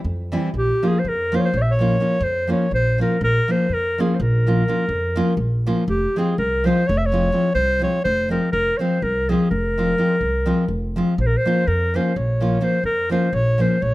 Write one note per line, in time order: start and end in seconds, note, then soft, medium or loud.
0.04 0.34 F2 medium
0.32 0.48 E3 medium
0.32 0.49 G3 medium
0.32 0.49 C4 medium
0.32 0.49 E4 medium
0.54 0.71 A#1 medium
0.58 0.89 G4 loud
0.83 0.99 F3 medium
0.83 0.99 A#3 medium
0.83 0.99 C#4 soft
0.83 0.99 F4 medium
0.88 1.01 G#4 medium
0.99 1.10 C5 medium
1.05 1.34 F2 medium
1.05 1.37 A#4 medium
1.32 1.48 F3 medium
1.32 1.49 A#3 medium
1.32 1.49 C#4 medium
1.32 1.49 F4 medium
1.32 1.40 C5 medium
1.38 1.46 C#5 medium
1.45 1.59 C5 medium
1.54 1.94 A#1 loud
1.54 1.63 C#5 medium
1.62 1.73 E5 medium
1.71 2.25 C#5 medium
1.79 1.95 F3 medium
1.79 1.96 A#3 medium
1.79 1.96 C#4 medium
1.79 1.96 F4 medium
2.00 2.16 F3 soft
2.00 2.16 A#3 medium
2.00 2.17 C#4 medium
2.00 2.17 F4 medium
2.21 2.51 F2 medium
2.21 2.50 C5 loud
2.47 2.65 F3 medium
2.47 2.66 A#3 medium
2.47 2.66 C#4 medium
2.47 2.66 F4 medium
2.52 2.71 C#5 medium
2.71 3.01 A#1 medium
2.71 2.99 C5 loud
2.98 3.15 F3 medium
2.98 3.16 A#3 medium
2.98 3.16 C#4 medium
2.98 3.17 F4 medium
2.98 3.21 A#4 medium
3.21 3.38 A#1 loud
3.21 3.53 A#4 loud
3.48 3.65 F3 medium
3.48 3.65 A#3 medium
3.48 3.66 C#4 medium
3.48 3.66 F4 medium
3.48 3.75 C5 medium
3.69 4.00 F2 medium
3.73 4.02 A#4 loud
3.98 4.15 F3 medium
3.98 4.16 A#3 medium
3.98 4.16 C#4 medium
3.98 4.16 F4 medium
3.98 4.17 G#4 medium
4.15 4.23 C5 soft
4.20 4.61 A#1 loud
4.20 5.67 A#4 medium
4.47 4.62 F3 medium
4.47 4.63 A#3 medium
4.47 4.63 C#4 soft
4.47 4.63 F4 medium
4.68 4.84 F3 medium
4.68 4.84 A#3 medium
4.68 4.84 C#4 soft
4.68 4.84 F4 medium
4.89 5.19 F2 medium
5.16 5.32 F3 medium
5.16 5.33 A#3 medium
5.16 5.33 C#4 medium
5.16 5.33 F4 medium
5.37 5.67 A#1 medium
5.66 5.83 F3 medium
5.66 5.83 A#3 medium
5.66 5.83 C#4 medium
5.66 5.83 F4 medium
5.88 6.04 F1 medium
5.88 6.19 G4 medium
6.16 6.32 F3 medium
6.16 6.33 G#3 medium
6.16 6.33 C4 medium
6.16 6.34 F4 medium
6.16 6.38 G#4 medium
6.38 6.68 C2 medium
6.38 6.67 A#4 medium
6.64 6.81 F3 medium
6.64 6.82 G#3 medium
6.64 6.82 C4 medium
6.64 6.83 F4 medium
6.64 6.89 C5 medium
6.88 7.29 F1 loud
6.88 6.99 C#5 loud
6.98 7.07 E5 medium
7.06 7.54 C#5 medium
7.12 7.28 F3 medium
7.12 7.28 G#3 medium
7.12 7.29 C4 medium
7.12 7.29 F4 medium
7.32 7.49 F3 medium
7.32 7.49 G#3 medium
7.32 7.50 C4 soft
7.32 7.50 F4 medium
7.55 7.85 C2 medium
7.55 7.81 C5 loud
7.80 7.98 F3 medium
7.80 7.99 G#3 medium
7.80 7.99 C4 medium
7.80 7.99 F4 medium
7.80 8.04 C#5 loud
8.04 8.35 F1 medium
8.04 8.30 C5 loud
8.29 8.47 F3 medium
8.29 8.48 G#3 soft
8.29 8.48 C4 medium
8.29 8.48 F4 medium
8.29 8.52 A#4 medium
8.52 8.70 F1 medium
8.52 8.79 A#4 loud
8.77 8.97 F3 medium
8.77 8.97 G#3 medium
8.77 8.98 C4 medium
8.77 8.98 F4 medium
8.77 9.04 C5 medium
8.77 8.82 C#5 medium
9.02 9.32 C2 medium
9.02 9.31 A#4 medium
9.29 9.47 F3 medium
9.29 9.47 G#3 medium
9.29 9.47 C4 medium
9.29 9.48 F4 medium
9.29 9.50 G#4 medium
9.51 9.92 F1 medium
9.51 10.92 A#4 medium
9.78 9.94 F3 medium
9.78 9.94 G#3 medium
9.78 9.94 C4 medium
9.78 9.94 F4 medium
9.98 10.15 F3 medium
9.98 10.15 G#3 soft
9.98 10.15 C4 soft
9.98 10.15 F4 medium
10.21 10.50 C2 medium
10.46 10.63 F3 medium
10.46 10.64 G#3 medium
10.46 10.63 C4 medium
10.46 10.64 F4 medium
10.68 10.98 F1 medium
10.96 11.13 F3 medium
10.96 11.13 G#3 medium
10.96 11.13 C4 medium
10.96 11.14 F4 medium
11.18 11.35 A#1 medium
11.18 11.28 C5 medium
11.27 11.39 A#4 medium
11.37 11.69 C5 loud
11.45 11.62 F3 medium
11.45 11.62 A#3 medium
11.45 11.63 C#4 medium
11.45 11.63 F4 medium
11.67 11.97 F2 medium
11.67 11.97 A#4 medium
11.94 12.11 F3 medium
11.94 12.11 A#3 medium
11.94 12.12 C#4 medium
11.94 12.12 F4 medium
11.94 12.19 C5 medium
12.16 12.57 A#1 medium
12.16 12.66 C#5 medium
12.40 12.57 F3 medium
12.40 12.57 A#3 medium
12.40 12.58 C#4 medium
12.40 12.58 F4 medium
12.61 12.78 F3 medium
12.61 12.78 A#3 soft
12.61 12.78 C#4 medium
12.61 12.78 F4 medium
12.61 12.85 C5 medium
12.84 13.13 F2 medium
12.84 13.10 A#4 medium
13.10 13.27 F3 medium
13.10 13.27 A#3 medium
13.10 13.28 C#4 medium
13.10 13.28 F4 medium
13.10 13.36 C5 medium
13.33 13.62 A#1 medium
13.33 13.63 C#5 loud
13.58 13.76 F3 medium
13.58 13.76 A#3 medium
13.58 13.77 C#4 medium
13.58 13.77 F4 medium
13.58 13.84 C5 medium
13.82 13.94 A#1 medium
13.82 13.94 C#5 loud